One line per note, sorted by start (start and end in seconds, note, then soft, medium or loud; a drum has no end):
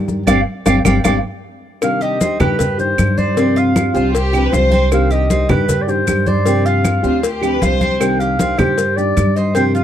0.00 0.25 G2 loud
0.00 0.26 D#3 soft
0.00 0.25 G3 medium
0.00 0.25 D4 medium
0.00 0.27 G4 medium
0.08 high bongo soft
0.08 high conga medium
0.08 maracas soft
0.26 0.42 G1 medium
0.26 0.39 G3 loud
0.26 0.39 C4 medium
0.26 0.39 D4 loud
0.26 0.40 D5 loud
0.26 0.40 F5 loud
0.26 0.40 G5 medium
0.26 low bongo medium
0.26 high conga loud
0.26 claves loud
0.26 maracas medium
0.66 0.80 G1 loud
0.66 0.78 G3 medium
0.66 0.78 C4 loud
0.66 0.78 D4 medium
0.66 0.78 D5 medium
0.66 0.78 F5 loud
0.66 0.78 G5 medium
0.66 low bongo medium
0.66 high conga loud
0.66 claves medium
0.66 maracas loud
0.85 1.00 G1 loud
0.85 0.97 G3 loud
0.85 0.98 C4 loud
0.85 0.97 D4 loud
0.85 0.98 D5 medium
0.85 0.98 F5 medium
0.85 0.98 G5 medium
0.85 low bongo medium
0.85 high conga loud
0.85 claves loud
0.85 maracas loud
1.04 1.19 G1 loud
1.04 1.17 G3 medium
1.04 1.17 C4 medium
1.04 1.17 D4 medium
1.04 1.17 D5 medium
1.04 1.17 F5 medium
1.04 1.17 G5 medium
1.04 low bongo medium
1.04 high conga loud
1.04 claves loud
1.04 maracas loud
1.81 2.20 C3 medium
1.81 2.18 D#3 medium
1.81 2.19 G3 medium
1.81 2.20 D4 medium
1.81 2.20 G4 medium
1.81 2.04 F5 loud
1.81 cowbell loud
1.81 high conga soft
1.81 claves medium
1.81 maracas medium
2.01 2.20 G4 medium
2.01 2.40 D#5 loud
2.01 high conga soft
2.01 maracas soft
2.20 2.39 D#3 soft
2.20 2.39 G3 soft
2.20 2.40 C4 medium
2.20 2.39 D4 medium
2.20 2.38 G4 medium
2.20 cowbell medium
2.20 high conga loud
2.20 maracas medium
2.39 2.94 G2 medium
2.39 2.58 D#3 medium
2.39 2.58 G3 medium
2.39 2.58 D4 medium
2.39 2.58 G4 medium
2.39 2.78 G4 medium
2.39 2.77 B4 loud
2.39 cowbell medium
2.39 high conga loud
2.39 low conga medium
2.39 claves medium
2.39 maracas soft
2.58 muted nylon-string guitar stroke medium
2.58 cowbell loud
2.58 high conga soft
2.58 low conga medium
2.58 maracas medium
2.78 2.96 D#3 medium
2.78 2.97 G3 medium
2.78 2.97 D4 medium
2.78 2.97 G4 medium
2.78 3.20 C5 loud
2.78 high conga soft
2.78 maracas soft
2.97 3.89 G2 medium
2.97 3.36 D#3 medium
2.97 3.36 G3 medium
2.97 3.36 D4 medium
2.97 3.37 G4 medium
2.97 cowbell medium
2.97 high conga medium
2.97 claves medium
2.97 maracas medium
3.18 3.36 C5 medium
3.18 3.59 D5 medium
3.18 high conga medium
3.18 maracas soft
3.36 3.74 C3 medium
3.36 3.74 F3 medium
3.36 3.75 C4 medium
3.36 3.56 C4 medium
3.36 3.75 D4 medium
3.36 3.75 G4 medium
3.36 cowbell loud
3.36 high conga soft
3.36 maracas medium
3.56 3.94 F4 medium
3.56 4.15 F5 loud
3.56 high conga soft
3.56 maracas soft
3.75 3.94 F3 soft
3.75 3.94 C4 medium
3.75 3.94 D4 medium
3.75 3.93 G4 medium
3.75 cowbell medium
3.75 high conga loud
3.75 claves medium
3.75 maracas medium
3.94 4.49 C2 loud
3.94 4.12 F3 medium
3.94 4.13 C4 medium
3.94 4.13 D4 medium
3.94 4.13 F4 medium
3.94 4.13 G4 medium
3.94 4.32 C5 medium
3.94 high conga soft
3.94 maracas soft
4.13 4.43 G4 loud
4.13 muted nylon-string guitar stroke medium
4.13 cowbell loud
4.13 high conga soft
4.13 maracas medium
4.33 4.51 F3 medium
4.33 4.52 C4 medium
4.33 4.52 D4 medium
4.33 4.52 G4 medium
4.33 high conga soft
4.33 claves medium
4.33 maracas soft
4.43 4.53 B4 loud
4.52 5.44 C2 loud
4.52 4.91 F3 medium
4.52 4.91 C4 medium
4.52 4.91 D4 soft
4.52 4.71 F4 medium
4.52 4.91 G4 medium
4.52 4.82 C5 loud
4.52 cowbell medium
4.52 high conga medium
4.52 maracas medium
4.72 5.09 C4 loud
4.72 high conga medium
4.72 maracas soft
4.91 5.29 C3 medium
4.91 5.28 D#3 medium
4.91 5.28 G3 medium
4.91 5.29 D4 medium
4.91 5.30 G4 medium
4.91 5.13 F5 medium
4.91 cowbell loud
4.91 high conga soft
4.91 claves medium
4.91 maracas medium
5.10 5.29 G4 medium
5.10 5.52 D#5 loud
5.10 high conga soft
5.10 maracas soft
5.29 5.48 D#3 soft
5.29 5.49 G3 medium
5.29 5.49 C4 medium
5.29 5.49 D4 medium
5.29 5.48 G4 medium
5.29 cowbell medium
5.29 high conga loud
5.29 maracas medium
5.49 6.04 G2 loud
5.49 5.67 D#3 medium
5.49 5.68 G3 medium
5.49 5.68 D4 medium
5.49 5.68 G4 medium
5.49 5.87 G4 medium
5.49 5.84 B4 loud
5.49 cowbell medium
5.49 high conga loud
5.49 low conga medium
5.49 claves medium
5.49 maracas soft
5.68 muted nylon-string guitar stroke medium
5.68 cowbell medium
5.68 high conga soft
5.68 low conga medium
5.68 maracas medium
5.82 5.91 D5 medium
5.87 6.05 D#3 medium
5.87 6.06 G3 medium
5.87 6.06 D4 medium
5.87 6.06 G4 medium
5.87 6.29 C5 loud
5.87 high conga soft
5.87 maracas soft
6.06 6.98 G2 medium
6.06 6.45 D#3 medium
6.06 6.45 G3 medium
6.06 6.45 D4 medium
6.06 6.46 G4 medium
6.06 cowbell medium
6.06 high conga medium
6.06 claves medium
6.06 maracas medium
6.26 6.45 C5 medium
6.26 6.67 D5 loud
6.26 high conga medium
6.26 maracas soft
6.45 6.83 C3 medium
6.45 6.82 F3 medium
6.45 6.84 C4 medium
6.45 6.65 C4 medium
6.45 6.84 D4 medium
6.45 6.84 G4 medium
6.45 cowbell medium
6.45 high conga soft
6.45 maracas medium
6.66 7.03 F4 medium
6.66 7.24 F5 medium
6.66 high conga soft
6.66 maracas soft
6.84 7.03 F3 medium
6.84 7.03 C4 soft
6.84 7.02 D4 soft
6.84 cowbell medium
6.84 high conga medium
6.84 claves medium
6.84 maracas medium
7.03 7.58 D2 medium
7.03 7.22 F3 medium
7.03 7.22 C4 medium
7.03 7.22 D4 medium
7.03 7.22 F4 medium
7.03 7.22 G4 medium
7.03 7.42 C5 medium
7.03 high conga soft
7.03 maracas soft
7.23 7.51 G4 medium
7.23 muted nylon-string guitar stroke medium
7.23 cowbell loud
7.23 high conga soft
7.23 maracas medium
7.41 7.59 F3 medium
7.41 7.60 C4 medium
7.41 7.61 D4 medium
7.41 7.61 G4 medium
7.41 7.62 G4 medium
7.41 high conga soft
7.41 claves medium
7.41 maracas soft
7.52 7.62 B4 loud
7.60 8.53 C2 medium
7.60 7.99 F3 medium
7.60 8.00 C4 medium
7.60 8.00 D4 medium
7.60 7.81 F4 medium
7.60 8.00 G4 medium
7.60 7.91 C5 loud
7.60 cowbell medium
7.60 high conga medium
7.60 maracas medium
7.81 8.19 C4 loud
7.81 high conga medium
7.81 maracas soft
7.99 8.38 C3 medium
7.99 8.37 D#3 medium
7.99 8.38 G3 medium
7.99 8.39 D4 medium
7.99 8.39 G4 medium
7.99 8.21 G5 loud
7.99 cowbell loud
7.99 high conga soft
7.99 claves medium
7.99 maracas medium
8.20 8.39 G4 medium
8.20 8.60 F5 loud
8.20 high conga soft
8.20 maracas soft
8.38 8.58 D#3 soft
8.38 8.58 G3 soft
8.38 8.58 C4 medium
8.38 8.57 D4 medium
8.38 8.57 G4 medium
8.38 cowbell medium
8.38 high conga loud
8.38 maracas medium
8.58 9.13 G2 medium
8.58 8.77 D#3 medium
8.58 8.78 G3 medium
8.58 8.77 D4 medium
8.58 8.77 G4 medium
8.58 8.96 G4 medium
8.58 8.99 C5 loud
8.58 cowbell medium
8.58 high conga loud
8.58 low conga medium
8.58 claves medium
8.58 maracas soft
8.78 muted nylon-string guitar stroke medium
8.78 cowbell medium
8.78 high conga soft
8.78 maracas medium
8.97 9.15 D#3 medium
8.97 9.16 G3 medium
8.97 9.16 D4 medium
8.97 9.16 G4 medium
8.97 9.38 D5 loud
8.97 high conga soft
8.97 maracas soft
9.16 9.84 G2 medium
9.16 9.55 D#3 medium
9.16 9.55 G3 medium
9.16 9.55 D4 medium
9.16 9.56 G4 medium
9.16 cowbell medium
9.16 high conga medium
9.16 claves medium
9.16 maracas medium
9.36 9.55 C5 medium
9.36 9.55 D#5 medium
9.36 maracas soft
9.55 9.84 C3 medium
9.55 9.84 F3 medium
9.55 9.74 C4 medium
9.55 9.84 C4 medium
9.55 9.84 D4 medium
9.55 9.84 G4 medium
9.55 9.64 G5 loud
9.55 cowbell loud
9.55 high conga soft
9.55 maracas medium
9.75 9.84 F4 medium
9.75 9.84 F5 medium
9.75 high conga soft
9.75 maracas soft